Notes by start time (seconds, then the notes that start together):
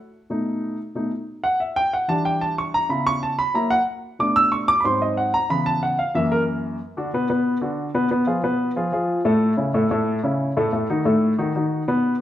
0.30 B2 A3 D#4
0.95 B2 A3 D#4
1.44 F#5
1.60 E5
1.76 G5
1.93 F#5
2.08 E3 G3 D4 A5
2.25 G5
2.41 A5
2.58 C#6
2.74 A#5
2.89 C#3 B3 E4 B5
3.07 C#6
3.23 A5
3.39 B5
3.54 F#3 A#3 E4 A#5
3.70 F#5
4.19 B2 A3 D4 D6
4.36 E6
4.52 C#6
4.68 D6
4.80 G#2 B5
4.85 F#3 C4 C6
5.02 D#5
5.17 F#5
5.34 A#5
5.50 C#3 E3 B3 B5
5.66 A5
5.83 F#5
5.99 F5
6.15 F#2 E3 A#3 E5
6.32 A#4
6.97 D3 D4 F#4
7.14 B2 B3 B4
7.30 B2 B3 B4
7.61 D3 D4 F#4
7.94 B2 B3 B4
8.11 B2 B3 B4
8.27 F3 F4 G#4
8.43 B2 B3 B4
8.76 F3 F4 G#4
8.92 F3 F4 G#4
9.25 A2 A3 A4
9.57 C#3 C#4 E4
9.74 A2 A3 A4
9.91 A2 A3 A4
10.24 C#3 C#4 E4
10.57 A2 A3 A4
10.73 A2 A3 A4
10.90 D#3 D#4 F#4
11.05 A2 A3 A4
11.38 D#3 D#4 F#4
11.55 D#3 D#4 F#4
11.88 B2 B3 B4